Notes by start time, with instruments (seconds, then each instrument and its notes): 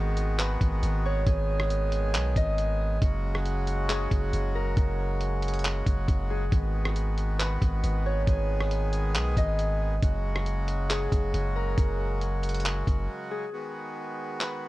Already playing: 808-style bass G#1, accordion D#3 G#3 B3 F#4, harp G#4
0.17 closed hi-hat
0.38 harp B4, clap, closed hi-hat
0.61 808-style bass G#1, kick, closed hi-hat
0.83 808-style bass G#1, closed hi-hat
1.05 harp C#5
1.27 808-style bass G#1, accordion G#4, kick, closed hi-hat
1.60 cross-stick
1.70 closed hi-hat
1.92 closed hi-hat
2.14 808-style bass B1, clap, closed hi-hat
2.36 808-style bass G#1, harp D#5, kick, closed hi-hat
2.58 closed hi-hat
3.02 808-style bass F#1, accordion C#3 F#3 F#4, kick, closed hi-hat
3.35 cross-stick
3.45 closed hi-hat
3.67 closed hi-hat
3.89 harp G#4, clap, closed hi-hat
4.11 808-style bass F#1, kick, closed hi-hat
4.33 808-style bass F#1, closed hi-hat
4.55 harp A#4
4.77 808-style bass F#1, kick, closed hi-hat
5.21 closed hi-hat
5.42 closed hi-hat, open hi-hat
5.48 closed hi-hat
5.54 closed hi-hat
5.59 closed hi-hat
5.65 clap, closed hi-hat
5.86 808-style bass F#1, kick, closed hi-hat
6.08 808-style bass F#1, kick, closed hi-hat
6.30 harp G#4
6.52 808-style bass G#1, accordion D#3 B3, kick, closed hi-hat
6.85 cross-stick
6.96 closed hi-hat
7.18 closed hi-hat
7.39 harp B4, clap, closed hi-hat
7.62 808-style bass G#1, kick, closed hi-hat
7.84 808-style bass G#1, closed hi-hat
8.06 harp C#5
8.27 808-style bass G#1, accordion G#4, kick, closed hi-hat
8.61 cross-stick
8.71 closed hi-hat
8.93 closed hi-hat
9.15 808-style bass B1, clap, closed hi-hat
9.37 808-style bass G#1, harp D#5, kick, closed hi-hat
9.59 closed hi-hat
10.03 808-style bass F#1, accordion C#3 F#3 G#3 F#4, kick, closed hi-hat
10.36 cross-stick
10.46 closed hi-hat
10.68 closed hi-hat
10.90 harp G#4, clap, closed hi-hat
11.12 808-style bass F#1, kick, closed hi-hat
11.34 808-style bass F#1, closed hi-hat
11.56 harp A#4
11.78 808-style bass F#1, kick, closed hi-hat
12.21 closed hi-hat
12.43 closed hi-hat, open hi-hat
12.49 closed hi-hat
12.54 closed hi-hat
12.60 closed hi-hat
12.65 clap, closed hi-hat
12.87 808-style bass F#1, kick, closed hi-hat
13.31 harp G#4
13.53 accordion D#3 G#3 B3 F#4
14.40 harp B4, clap